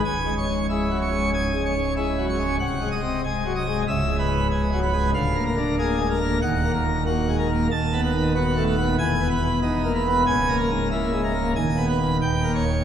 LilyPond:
<<
  \new Staff \with { instrumentName = "Pipe organ" } { \time 4/4 \key cis \dorian \tempo 4 = 94 gis''8 cis''8 e'8 cis''8 gis''8 cis''8 e'8 cis''8 | fis''8 dis''8 gis'8 dis''8 e''8 b'8 gis'8 b'8 | eis''8 ais'8 gis'8 ais'8 fis''8 ais'8 fis'8 ais'8 | a''8 b'8 fis'8 b'8 gis''8 b'8 dis'8 b'8 |
gis''8 ais'8 e'8 ais'8 gis''8 b'8 g''8 cis''8 | }
  \new Staff \with { instrumentName = "Pipe organ" } { \clef bass \time 4/4 \key cis \dorian << { \tuplet 3/2 { cis,8 gis8 gis,8 gis8 fis8 gis8 gis,8 gis8 gis,8 gis8 fis8 gis8 } | \tuplet 3/2 { bis,,8 gis8 bis,8 gis8 fis8 gis8 cis,8 gis8 gis,8 gis8 fis8 gis8 } | \tuplet 3/2 { d,8 ais8 d8 ais8 gis8 ais8 dis,8 ais8 ais,8 ais8 gis8 ais8 } | \tuplet 3/2 { dis,8 b8 dis8 b8 a8 b8 e,8 b8 b,8 b8 ais8 b8 } |
\tuplet 3/2 { cis,8 ais8 gis,8 ais8 gis8 ais8 dis,8 b8 r8 dis,8 ais8 r8 } | } \\ { cis,,1 | bis,,,2 cis,,2 | d,,2 dis,,2 | dis,,2 e,,2 |
cis,,2 dis,,4 dis,,4 | } >> }
>>